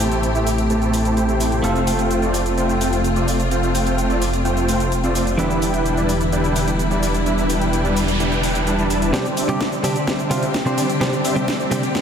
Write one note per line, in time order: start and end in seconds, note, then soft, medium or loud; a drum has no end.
0.00 1.61 A1 medium
0.00 1.60 A2 medium
0.00 5.35 C3 medium
0.00 0.32 A3 medium
0.00 1.61 A3 medium
0.00 5.35 A3 medium
0.00 1.61 C4 medium
0.00 0.32 E4 medium
0.00 1.61 E4 medium
0.00 0.32 G4 medium
0.00 1.60 G4 medium
0.00 1.62 G4 medium
0.00 0.32 C5 medium
0.00 0.32 A5 medium
0.12 closed hi-hat soft
0.12 cabasa soft
0.23 closed hi-hat medium
0.23 cabasa soft
0.35 0.49 A3 medium
0.35 0.49 E4 medium
0.35 0.49 G4 medium
0.35 0.49 C5 medium
0.35 0.49 E5 loud
0.35 closed hi-hat soft
0.35 cabasa soft
0.47 open hi-hat medium
0.47 cabasa medium
0.58 closed hi-hat soft
0.58 cabasa soft
0.70 0.91 A3 medium
0.70 0.91 E4 medium
0.70 0.91 G4 medium
0.70 0.91 C5 medium
0.70 0.91 A5 loud
0.70 closed hi-hat soft
0.70 cabasa soft
0.82 closed hi-hat soft
0.82 cabasa soft
0.93 1.14 A3 medium
0.93 1.14 E4 medium
0.93 1.14 G4 medium
0.93 1.14 C5 medium
0.93 1.14 A5 medium
0.93 open hi-hat medium
0.93 cabasa medium
1.05 closed hi-hat soft
1.05 cabasa soft
1.17 1.26 A3 medium
1.17 1.26 E4 medium
1.17 1.26 G4 medium
1.17 1.26 C5 medium
1.17 1.26 G5 loud
1.17 closed hi-hat soft
1.17 cabasa soft
1.29 1.39 A3 medium
1.29 1.39 E4 medium
1.29 1.39 G4 medium
1.29 1.39 C5 medium
1.29 1.39 G5 medium
1.29 closed hi-hat soft
1.29 cabasa soft
1.40 1.61 A3 medium
1.40 1.61 E4 medium
1.40 1.61 G4 medium
1.40 1.61 C5 medium
1.40 1.61 G5 medium
1.40 open hi-hat medium
1.40 cabasa medium
1.52 closed hi-hat soft
1.52 cabasa soft
1.62 5.36 F1 medium
1.62 5.35 A3 medium
1.62 1.84 A3 medium
1.62 5.36 C4 medium
1.62 1.84 C4 medium
1.62 1.84 F4 medium
1.62 5.35 F4 medium
1.62 5.36 F4 medium
1.62 5.37 A4 medium
1.62 1.84 C5 medium
1.62 1.84 F5 medium
1.62 closed hi-hat soft
1.62 cabasa soft
1.76 closed hi-hat soft
1.76 cabasa soft
1.87 2.20 A3 medium
1.87 2.20 C4 medium
1.87 2.20 F4 medium
1.87 2.20 C5 medium
1.87 2.20 G5 medium
1.87 open hi-hat loud
1.87 cabasa medium
1.99 closed hi-hat soft
1.99 cabasa soft
2.11 closed hi-hat soft
2.11 cabasa soft
2.22 2.36 A3 medium
2.22 2.36 C4 medium
2.22 2.36 F4 medium
2.22 2.36 C5 medium
2.22 2.36 D5 loud
2.22 closed hi-hat soft
2.22 cabasa soft
2.34 open hi-hat medium
2.34 cabasa medium
2.46 closed hi-hat soft
2.46 cabasa soft
2.57 2.78 A3 medium
2.57 2.78 C4 medium
2.57 2.78 F4 medium
2.57 2.78 C5 medium
2.57 2.78 G5 loud
2.57 closed hi-hat soft
2.57 cabasa soft
2.69 closed hi-hat soft
2.69 cabasa soft
2.81 2.95 A3 medium
2.81 2.95 C4 medium
2.81 2.95 F4 medium
2.81 2.95 C5 medium
2.81 2.95 G5 loud
2.81 open hi-hat medium
2.81 cabasa medium
2.93 closed hi-hat soft
2.93 cabasa soft
3.04 closed hi-hat soft
3.04 cabasa soft
3.16 3.38 A3 medium
3.16 3.38 C4 medium
3.16 3.38 F4 medium
3.16 3.38 C5 medium
3.16 3.38 D5 medium
3.16 closed hi-hat soft
3.16 cabasa soft
3.28 open hi-hat medium
3.28 cabasa medium
3.40 closed hi-hat medium
3.40 cabasa soft
3.51 3.72 A3 medium
3.51 3.72 C4 medium
3.51 3.72 F4 medium
3.51 3.72 C5 medium
3.51 3.72 F5 medium
3.51 closed hi-hat medium
3.51 cabasa soft
3.63 closed hi-hat soft
3.63 cabasa soft
3.75 4.07 A3 medium
3.75 4.07 C4 medium
3.75 4.07 F4 medium
3.75 4.07 C5 medium
3.75 4.07 G5 medium
3.75 open hi-hat medium
3.75 cabasa medium
3.87 closed hi-hat soft
3.87 cabasa soft
3.98 closed hi-hat medium
3.98 cabasa soft
4.10 4.24 A3 medium
4.10 4.24 C4 medium
4.10 4.24 F4 medium
4.10 4.24 C5 medium
4.10 4.24 D5 loud
4.10 closed hi-hat soft
4.10 cabasa soft
4.22 open hi-hat medium
4.22 cabasa medium
4.33 closed hi-hat soft
4.33 cabasa soft
4.45 4.66 A3 medium
4.45 4.66 C4 medium
4.45 4.66 F4 medium
4.45 4.66 C5 medium
4.45 4.66 G5 loud
4.45 closed hi-hat soft
4.45 cabasa soft
4.57 closed hi-hat soft
4.57 cabasa soft
4.68 4.82 A3 medium
4.68 4.82 C4 medium
4.68 4.82 F4 medium
4.68 4.82 C5 medium
4.68 4.82 G5 loud
4.68 open hi-hat medium
4.68 cabasa medium
4.80 closed hi-hat medium
4.80 cabasa soft
4.92 closed hi-hat soft
4.92 cabasa soft
5.04 5.26 A3 medium
5.04 5.26 C4 medium
5.04 5.26 F4 medium
5.04 5.26 C5 medium
5.04 5.26 D5 medium
5.04 closed hi-hat soft
5.04 cabasa soft
5.15 open hi-hat medium
5.15 cabasa medium
5.27 closed hi-hat soft
5.27 cabasa soft
5.38 9.11 E1 medium
5.38 9.10 D3 medium
5.38 9.10 E3 medium
5.38 5.59 G3 medium
5.38 9.10 G3 medium
5.38 9.11 B3 medium
5.38 5.59 D4 medium
5.38 9.11 D4 medium
5.38 5.59 E4 medium
5.38 9.10 E4 medium
5.38 9.11 E4 medium
5.38 9.12 G4 medium
5.38 5.59 B4 medium
5.38 5.59 E5 medium
5.38 closed hi-hat soft
5.38 cabasa soft
5.50 closed hi-hat soft
5.50 cabasa soft
5.62 5.95 G3 medium
5.62 5.95 D4 medium
5.62 5.95 E4 medium
5.62 5.95 B4 medium
5.62 5.95 G5 medium
5.62 open hi-hat loud
5.62 cabasa medium
5.74 closed hi-hat soft
5.74 cabasa soft
5.86 closed hi-hat medium
5.86 cabasa soft
5.97 6.11 G3 medium
5.97 6.11 D4 medium
5.97 6.11 E4 medium
5.97 6.11 B4 medium
5.97 6.11 D5 loud
5.97 closed hi-hat soft
5.97 cabasa soft
6.09 open hi-hat medium
6.09 cabasa medium
6.21 closed hi-hat soft
6.21 cabasa soft
6.32 6.53 G3 medium
6.32 6.53 D4 medium
6.32 6.53 E4 medium
6.32 6.53 B4 medium
6.32 6.53 G5 medium
6.32 closed hi-hat soft
6.32 cabasa soft
6.44 closed hi-hat soft
6.44 cabasa soft
6.56 6.70 G3 medium
6.56 6.70 D4 medium
6.56 6.70 E4 medium
6.56 6.70 B4 medium
6.56 6.70 G5 loud
6.56 open hi-hat medium
6.56 cabasa medium
6.68 closed hi-hat medium
6.68 cabasa soft
6.79 closed hi-hat medium
6.79 cabasa soft
6.91 7.13 G3 medium
6.91 7.13 D4 medium
6.91 7.13 E4 medium
6.91 7.13 B4 medium
6.91 7.13 D5 medium
6.91 closed hi-hat soft
6.91 cabasa soft
7.03 open hi-hat medium
7.03 cabasa medium
7.14 closed hi-hat soft
7.14 cabasa soft
7.26 7.47 G3 medium
7.26 7.47 D4 medium
7.26 7.47 E4 medium
7.26 7.47 B4 medium
7.26 7.47 E5 medium
7.26 closed hi-hat medium
7.26 noise sweep medium
7.26 cabasa soft
7.38 closed hi-hat soft
7.38 cabasa soft
7.50 7.82 G3 medium
7.50 7.82 D4 medium
7.50 7.82 E4 medium
7.50 7.82 B4 medium
7.50 7.82 G5 loud
7.50 open hi-hat medium
7.50 cabasa medium
7.61 closed hi-hat soft
7.61 cabasa soft
7.73 closed hi-hat medium
7.73 cabasa soft
7.85 7.99 G3 medium
7.85 7.99 D4 medium
7.85 7.99 E4 medium
7.85 7.99 B4 medium
7.85 7.99 D5 loud
7.85 closed hi-hat soft
7.85 cabasa soft
7.97 open hi-hat medium
7.97 cabasa medium
8.08 closed hi-hat medium
8.08 cabasa soft
8.20 8.41 G3 medium
8.20 8.41 D4 medium
8.20 8.41 E4 medium
8.20 8.41 B4 medium
8.20 8.41 G5 loud
8.20 closed hi-hat medium
8.20 cabasa soft
8.32 closed hi-hat soft
8.32 cabasa soft
8.43 8.64 G3 medium
8.43 8.64 D4 medium
8.43 8.64 E4 medium
8.43 8.64 B4 medium
8.43 8.64 G5 medium
8.43 open hi-hat medium
8.43 cabasa medium
8.55 closed hi-hat medium
8.55 cabasa soft
8.67 8.76 G3 medium
8.67 8.76 D4 medium
8.67 8.76 E4 medium
8.67 8.76 B4 medium
8.67 8.76 A5 loud
8.67 closed hi-hat medium
8.67 cabasa soft
8.78 8.89 G3 medium
8.78 8.89 D4 medium
8.78 8.89 E4 medium
8.78 8.89 B4 medium
8.78 8.88 A5 medium
8.78 closed hi-hat soft
8.78 cabasa soft
8.90 9.11 G3 medium
8.90 9.11 D4 medium
8.90 9.11 E4 medium
8.90 9.11 B4 medium
8.90 9.11 A5 loud
8.90 open hi-hat medium
8.90 cabasa medium
9.02 closed hi-hat medium
9.02 cabasa soft
9.13 9.25 C3 medium
9.13 12.01 D3 medium
9.13 9.25 G3 medium
9.13 9.34 G3 medium
9.13 9.25 C4 medium
9.13 12.01 C4 medium
9.13 9.34 C4 medium
9.13 9.34 D4 medium
9.13 9.26 D4 medium
9.13 12.01 G4 medium
9.13 9.26 G4 loud
9.13 9.34 C5 medium
9.13 9.34 D5 medium
9.13 kick loud
9.13 snare soft
9.13 closed hi-hat medium
9.13 riser medium
9.13 cabasa soft
9.25 closed hi-hat soft
9.25 cabasa soft
9.37 9.69 G3 medium
9.37 9.69 C4 medium
9.37 9.69 D4 medium
9.37 9.69 C5 medium
9.37 9.69 E5 medium
9.37 open hi-hat loud
9.37 cabasa medium
9.48 9.60 C3 medium
9.48 9.60 G3 medium
9.48 9.61 C4 medium
9.48 9.61 D4 medium
9.48 9.61 G4 medium
9.48 closed hi-hat soft
9.48 cabasa soft
9.61 kick loud
9.61 snare soft
9.61 closed hi-hat medium
9.61 cabasa soft
9.72 9.86 G3 medium
9.72 9.86 C4 medium
9.72 9.86 D4 medium
9.72 9.86 C5 medium
9.72 9.86 D5 loud
9.72 closed hi-hat soft
9.72 cabasa soft
9.83 9.95 C3 medium
9.83 9.96 G3 medium
9.83 9.96 C4 medium
9.83 9.96 D4 medium
9.83 9.96 G4 loud
9.83 open hi-hat medium
9.83 cabasa medium
9.96 closed hi-hat medium
9.96 cabasa soft
10.07 10.28 G3 medium
10.07 10.28 C4 medium
10.07 10.28 D4 medium
10.07 10.28 C5 medium
10.07 10.28 E5 loud
10.07 kick loud
10.07 snare soft
10.07 closed hi-hat medium
10.07 cabasa soft
10.19 closed hi-hat soft
10.19 cabasa soft
10.30 10.42 C3 medium
10.30 10.45 G3 medium
10.30 10.42 G3 medium
10.30 10.43 C4 medium
10.30 10.45 C4 medium
10.30 10.45 D4 medium
10.30 10.43 D4 medium
10.30 10.43 F4 medium
10.30 10.45 C5 medium
10.30 10.45 E5 loud
10.30 open hi-hat loud
10.30 cabasa medium
10.43 closed hi-hat medium
10.43 cabasa soft
10.54 kick loud
10.54 snare medium
10.54 closed hi-hat medium
10.54 cabasa soft
10.65 10.77 C3 medium
10.65 10.78 G3 medium
10.65 10.88 G3 medium
10.65 10.78 C4 medium
10.65 10.88 C4 medium
10.65 10.88 D4 medium
10.65 10.78 D4 medium
10.65 10.88 C5 medium
10.65 10.78 C5 medium
10.65 10.88 D5 medium
10.65 closed hi-hat soft
10.65 cabasa soft
10.78 open hi-hat medium
10.78 cabasa medium
10.90 closed hi-hat medium
10.90 cabasa soft
11.00 11.13 C3 medium
11.00 11.13 G3 medium
11.00 11.22 G3 medium
11.00 11.13 C4 medium
11.00 11.22 C4 medium
11.00 11.22 D4 medium
11.00 11.13 D4 medium
11.00 11.13 G4 loud
11.00 11.22 C5 medium
11.00 11.22 D5 loud
11.00 kick loud
11.00 snare medium
11.00 closed hi-hat medium
11.00 cabasa soft
11.13 closed hi-hat soft
11.13 cabasa soft
11.25 11.57 G3 medium
11.25 11.57 C4 medium
11.25 11.57 D4 medium
11.25 11.57 C5 medium
11.25 11.57 E5 medium
11.25 open hi-hat loud
11.25 cabasa medium
11.36 11.48 C3 medium
11.36 11.48 G3 medium
11.36 11.48 C4 medium
11.36 11.48 D4 medium
11.36 11.48 G4 medium
11.36 closed hi-hat soft
11.36 cabasa soft
11.48 kick loud
11.48 snare medium
11.48 closed hi-hat medium
11.48 cabasa soft
11.60 11.74 G3 medium
11.60 11.74 C4 medium
11.60 11.74 D4 medium
11.60 11.74 C5 medium
11.60 11.74 D5 loud
11.60 closed hi-hat soft
11.60 cabasa soft
11.71 11.83 C3 loud
11.71 11.83 G3 medium
11.71 11.83 C4 medium
11.71 11.83 D4 medium
11.71 11.84 G4 loud
11.71 open hi-hat medium
11.71 cabasa medium
11.83 closed hi-hat medium
11.83 cabasa soft
11.95 12.01 G3 medium
11.95 12.01 C4 medium
11.95 12.01 D4 medium
11.95 12.01 C5 medium
11.95 12.01 E5 loud
11.95 kick loud
11.95 snare medium
11.95 closed hi-hat medium
11.95 cabasa soft